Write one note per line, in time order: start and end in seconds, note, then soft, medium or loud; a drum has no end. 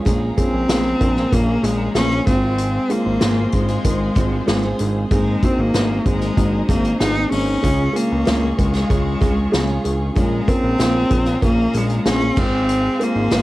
0.00 12.32 G#4 medium
0.00 5.06 F5 medium
0.05 0.32 A#1 loud
0.05 0.96 A#2 medium
0.05 0.68 F3 medium
0.05 0.69 G#3 medium
0.05 0.21 G#3 medium
0.05 0.35 A#3 medium
0.05 0.35 C#4 medium
0.05 0.69 C#4 medium
0.05 0.35 F4 medium
0.05 0.36 G#4 loud
0.05 0.71 G#4 medium
0.05 2.25 A#5 medium
0.05 kick medium
0.05 closed hi-hat medium
0.37 0.67 A#3 medium
0.37 1.35 C4 medium
0.37 0.67 C#4 medium
0.37 0.67 F4 medium
0.37 0.67 G#4 loud
0.37 kick medium
0.37 closed hi-hat medium
0.54 0.66 A#1 medium
0.68 0.95 A#1 medium
0.68 1.16 F3 medium
0.68 1.16 G#3 medium
0.68 0.98 A#3 medium
0.68 0.99 C#4 medium
0.68 1.16 C#4 medium
0.68 0.99 F4 medium
0.68 0.99 G#4 medium
0.68 1.15 G#4 medium
0.68 snare loud
0.68 closed hi-hat loud
1.00 1.26 A#1 loud
1.00 1.29 A#3 medium
1.00 1.29 C#4 medium
1.00 1.30 F4 medium
1.00 1.30 A#4 medium
1.00 kick medium
1.00 closed hi-hat medium
1.17 1.65 A#2 medium
1.17 1.63 F3 medium
1.17 1.64 G#3 medium
1.17 1.64 C#4 medium
1.17 1.64 G#4 medium
1.17 snare soft
1.30 1.58 A#1 loud
1.30 1.60 A#3 medium
1.30 1.67 A#3 loud
1.30 1.61 C#4 medium
1.30 1.61 F4 medium
1.30 1.61 A#4 medium
1.30 kick medium
1.30 closed hi-hat medium
1.62 1.89 A#1 loud
1.62 2.11 F3 medium
1.62 2.12 G#3 medium
1.62 1.92 A#3 medium
1.62 1.93 C#4 medium
1.62 2.11 C#4 medium
1.62 1.93 F4 medium
1.62 1.93 G#4 medium
1.62 closed hi-hat medium
1.66 1.96 G#3 medium
1.66 2.10 G#4 medium
1.94 2.21 A#1 loud
1.94 2.25 A#3 loud
1.94 2.24 C#4 medium
1.94 2.25 C#4 loud
1.94 2.24 F4 medium
1.94 2.25 G#4 loud
1.94 snare loud
1.94 closed hi-hat medium
2.12 2.28 A#2 medium
2.12 2.27 F3 medium
2.12 2.26 G#3 medium
2.12 2.27 C#4 medium
2.12 2.27 G#4 medium
2.25 2.79 G#1 loud
2.25 3.17 G#2 medium
2.25 2.86 G#3 medium
2.25 3.21 G#3 medium
2.25 2.86 C4 medium
2.25 3.22 C4 medium
2.25 2.93 C4 medium
2.25 2.86 F4 medium
2.25 3.22 F4 medium
2.25 2.86 G#4 medium
2.25 3.23 G#4 medium
2.25 7.61 C5 medium
2.25 5.09 C6 medium
2.25 kick loud
2.25 closed hi-hat medium
2.58 closed hi-hat medium
2.89 3.18 G#3 loud
2.89 3.54 A#3 loud
2.89 3.19 C4 medium
2.89 3.19 F4 medium
2.89 3.19 G#4 loud
2.89 closed hi-hat medium
3.06 3.19 G#1 medium
3.20 3.47 G#1 medium
3.20 3.50 G#3 medium
3.20 3.69 G#3 medium
3.20 3.51 C4 medium
3.20 3.69 C4 medium
3.20 3.51 F4 medium
3.20 3.68 F4 medium
3.20 3.51 G#4 medium
3.20 3.67 G#4 medium
3.20 snare loud
3.20 closed hi-hat loud
3.52 3.79 G#1 loud
3.52 3.83 G#3 medium
3.52 3.83 C4 medium
3.52 3.83 F4 medium
3.52 3.83 G#4 medium
3.52 kick medium
3.52 closed hi-hat medium
3.57 4.77 G#3 medium
3.68 4.14 G#3 medium
3.68 4.15 C4 medium
3.68 4.16 F4 medium
3.68 4.16 G#4 medium
3.68 closed hi-hat soft
3.84 4.10 G#1 loud
3.84 4.14 G#3 medium
3.84 4.15 C4 medium
3.84 4.14 F4 medium
3.84 4.15 A#4 medium
3.84 kick medium
3.84 closed hi-hat medium
4.15 4.42 G#1 loud
4.15 4.63 G#3 medium
4.15 4.45 G#3 medium
4.15 4.45 C4 medium
4.15 4.64 C4 medium
4.15 4.46 F4 medium
4.15 4.63 F4 medium
4.15 4.46 G#4 medium
4.15 4.62 G#4 medium
4.15 kick medium
4.15 closed hi-hat medium
4.46 4.74 G#1 medium
4.46 4.77 G#3 loud
4.46 4.77 C4 loud
4.46 4.77 F4 loud
4.46 4.77 G#4 loud
4.46 snare loud
4.46 closed hi-hat medium
4.63 5.10 G#3 medium
4.63 5.11 C4 medium
4.63 5.11 F4 medium
4.63 5.11 G#4 medium
4.79 5.06 G#1 loud
4.79 5.09 G#3 medium
4.79 5.09 C4 medium
4.79 5.09 F4 medium
4.79 5.09 G#4 medium
4.79 closed hi-hat medium
5.11 5.37 G#1 loud
5.11 6.02 G#2 medium
5.11 5.73 G#3 medium
5.11 5.46 G#3 medium
5.11 5.41 A#3 medium
5.11 5.41 C4 medium
5.11 5.73 C4 medium
5.11 5.41 D#4 medium
5.11 5.74 D#4 medium
5.11 5.41 G#4 loud
5.11 5.75 A#4 medium
5.11 7.61 D#5 medium
5.11 7.61 A#5 medium
5.11 kick loud
5.11 closed hi-hat medium
5.43 5.72 A#3 loud
5.43 5.72 C4 medium
5.43 5.62 C4 medium
5.43 5.72 D#4 medium
5.43 5.72 F#4 loud
5.43 kick medium
5.43 closed hi-hat medium
5.58 5.71 G#1 loud
5.58 6.07 A#3 medium
5.73 6.00 G#1 loud
5.73 6.21 G#3 medium
5.73 6.03 A#3 medium
5.73 6.03 C4 medium
5.73 6.21 C4 medium
5.73 6.03 D#4 medium
5.73 6.21 D#4 medium
5.73 6.04 G#4 medium
5.73 6.20 A#4 medium
5.73 snare loud
5.73 closed hi-hat loud
6.05 6.32 G#1 medium
6.05 6.66 G#3 medium
6.05 6.34 A#3 medium
6.05 6.34 C4 medium
6.05 6.34 D#4 medium
6.05 6.35 G#4 medium
6.05 kick medium
6.05 closed hi-hat medium
6.22 6.67 G#3 medium
6.22 6.69 C4 medium
6.22 6.69 D#4 medium
6.22 6.69 A#4 medium
6.22 closed hi-hat medium
6.36 6.63 G#1 loud
6.36 6.66 A#3 medium
6.36 6.66 C4 medium
6.36 6.66 D#4 medium
6.36 6.67 F#4 medium
6.36 kick medium
6.36 closed hi-hat medium
6.67 6.95 G#1 loud
6.67 7.16 G#3 medium
6.67 6.98 A#3 medium
6.67 6.99 A#3 medium
6.67 6.98 C4 medium
6.67 7.16 C4 medium
6.67 6.98 D#4 medium
6.67 7.15 D#4 medium
6.67 6.98 G#4 medium
6.67 7.15 A#4 medium
6.67 kick medium
6.67 closed hi-hat medium
6.84 closed hi-hat medium
7.00 7.26 G#1 loud
7.00 7.28 A#3 loud
7.00 7.29 C4 medium
7.00 7.29 D#4 medium
7.00 7.30 D#4 loud
7.00 7.29 G#4 loud
7.00 snare medium
7.00 closed hi-hat medium
7.16 7.62 G#3 medium
7.16 7.64 C4 medium
7.16 7.64 D#4 medium
7.16 7.63 A#4 medium
7.30 7.57 G#1 medium
7.30 7.61 A#3 medium
7.30 7.61 C4 medium
7.30 7.98 C#4 loud
7.30 7.61 D#4 medium
7.30 7.61 G#4 medium
7.30 open hi-hat medium
7.61 7.89 C#2 loud
7.61 8.53 C#3 medium
7.61 7.91 G#3 medium
7.61 8.25 G#3 medium
7.61 7.91 C#4 medium
7.61 8.26 C#4 medium
7.61 7.92 F4 medium
7.61 8.27 F4 medium
7.61 7.92 G#4 medium
7.61 10.13 F5 medium
7.61 10.13 C#6 medium
7.61 kick medium
7.61 closed hi-hat medium
7.66 8.28 G#4 medium
7.92 8.23 G#3 medium
7.92 8.58 A#3 loud
7.92 8.24 C#4 medium
7.92 8.24 F4 medium
7.92 8.24 G#4 loud
7.92 closed hi-hat medium
8.12 8.24 C#2 medium
8.25 8.53 C#2 loud
8.25 8.56 G#3 medium
8.25 8.73 G#3 medium
8.25 8.56 C#4 medium
8.25 8.73 C#4 medium
8.25 8.56 F4 medium
8.25 8.73 F4 medium
8.25 8.72 G#4 medium
8.25 8.56 A#4 medium
8.25 snare loud
8.25 closed hi-hat loud
8.57 8.84 C#2 medium
8.57 8.87 G#3 medium
8.57 9.81 G#3 medium
8.57 8.88 C#4 medium
8.57 8.88 F4 medium
8.57 8.88 A#4 medium
8.57 kick medium
8.57 closed hi-hat medium
8.74 9.22 C#3 medium
8.74 9.20 G#3 medium
8.74 9.20 C#4 medium
8.74 9.21 F4 medium
8.74 9.21 G#4 medium
8.74 snare soft
8.74 closed hi-hat soft
8.88 9.16 C#2 medium
8.88 9.19 G#3 medium
8.88 9.19 C#4 medium
8.88 9.19 F4 medium
8.88 9.19 G#4 medium
8.88 kick medium
8.88 closed hi-hat medium
9.20 9.47 C#2 medium
9.20 9.50 G#3 medium
9.20 9.68 G#3 medium
9.20 9.50 C#4 medium
9.20 9.68 C#4 medium
9.20 9.51 F4 medium
9.20 9.68 F4 medium
9.20 9.51 G#4 medium
9.20 9.68 G#4 medium
9.20 kick medium
9.20 closed hi-hat medium
9.51 9.79 C#2 loud
9.51 9.82 G#3 loud
9.51 9.82 C#4 loud
9.51 9.82 F4 loud
9.51 9.82 G#4 loud
9.51 snare medium
9.51 closed hi-hat medium
9.69 10.17 C#3 medium
9.69 10.14 G#3 medium
9.69 10.15 C#4 medium
9.69 10.16 F4 medium
9.69 10.16 G#4 medium
9.84 10.11 C#2 medium
9.84 10.14 G#3 medium
9.84 10.14 C#4 medium
9.84 10.14 F4 medium
9.84 10.14 G#4 medium
9.84 closed hi-hat medium
10.15 10.42 A#1 medium
10.15 11.06 A#2 medium
10.15 10.78 G#3 medium
10.15 10.50 G#3 medium
10.15 10.45 A#3 medium
10.15 10.45 C#4 medium
10.15 10.78 C#4 medium
10.15 10.45 F4 medium
10.15 10.80 F4 medium
10.15 10.46 G#4 medium
10.15 10.81 G#4 medium
10.15 13.42 F5 medium
10.15 12.34 A#5 medium
10.15 kick medium
10.15 closed hi-hat medium
10.47 10.77 A#3 medium
10.47 11.43 C4 loud
10.47 10.77 C#4 medium
10.47 10.77 F4 medium
10.47 10.78 A#4 loud
10.47 kick medium
10.47 closed hi-hat medium
10.63 10.76 A#1 loud
10.78 11.05 A#1 medium
10.78 11.26 G#3 medium
10.78 11.08 A#3 medium
10.78 11.08 C#4 medium
10.78 11.26 C#4 medium
10.78 11.08 F4 medium
10.78 11.25 F4 medium
10.78 11.25 G#4 medium
10.78 11.09 A#4 medium
10.78 snare loud
10.78 closed hi-hat loud
11.10 11.37 A#1 loud
11.10 11.40 A#3 medium
11.10 11.40 C#4 medium
11.10 11.40 F4 medium
11.10 11.40 G#4 medium
11.10 kick medium
11.10 closed hi-hat medium
11.26 11.74 A#2 medium
11.26 11.72 G#3 medium
11.26 11.73 C#4 medium
11.26 11.74 F4 medium
11.26 11.73 G#4 medium
11.26 closed hi-hat medium
11.41 11.68 A#1 loud
11.41 11.72 A#3 medium
11.41 11.79 A#3 loud
11.41 11.72 C#4 medium
11.41 11.72 F4 medium
11.41 11.72 A#4 medium
11.41 kick medium
11.41 closed hi-hat medium
11.73 12.00 A#1 loud
11.73 12.21 G#3 medium
11.73 12.07 G#3 medium
11.73 12.03 A#3 medium
11.73 12.04 C#4 medium
11.73 12.20 C#4 medium
11.73 12.03 F4 medium
11.73 12.20 F4 medium
11.73 12.04 G#4 medium
11.73 12.19 G#4 medium
11.73 closed hi-hat medium
11.90 closed hi-hat medium
12.05 12.31 A#1 loud
12.05 12.35 A#3 medium
12.05 12.35 C#4 medium
12.05 12.41 C#4 loud
12.05 12.35 F4 medium
12.05 12.35 G#4 loud
12.05 snare loud
12.05 closed hi-hat medium
12.21 12.37 A#2 medium
12.21 12.35 G#3 medium
12.21 12.36 C#4 medium
12.21 12.36 F4 medium
12.21 12.37 G#4 medium
12.36 12.89 G#1 medium
12.36 13.27 G#2 medium
12.36 12.96 G#3 medium
12.36 13.30 G#3 medium
12.36 12.96 C4 medium
12.36 13.32 C4 medium
12.36 13.05 C4 loud
12.36 12.97 F4 medium
12.36 13.31 F4 medium
12.36 13.42 G#4 medium
12.36 12.97 G#4 medium
12.36 13.33 G#4 medium
12.36 13.42 C5 medium
12.36 13.42 C6 medium
12.36 kick medium
12.36 crash medium
12.69 closed hi-hat medium
12.99 13.29 G#3 loud
12.99 13.42 A#3 loud
12.99 13.30 C4 medium
12.99 13.30 F4 loud
12.99 13.30 A#4 loud
12.99 closed hi-hat medium
13.15 13.28 G#1 loud
13.31 13.42 G#1 medium
13.31 13.42 G#3 medium
13.31 13.42 C4 medium
13.31 13.42 F4 medium
13.31 13.42 G#4 medium
13.31 snare loud
13.31 closed hi-hat loud